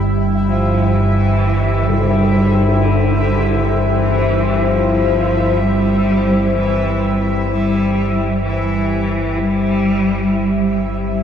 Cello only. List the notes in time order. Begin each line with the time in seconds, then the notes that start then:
0.49 F3
0.94 E3
1.86 G3
2.82 D3
3.75 E3
4.67 F3
5.58 G3
6.54 E3
7.50 G3
8.44 E3
9.38 G3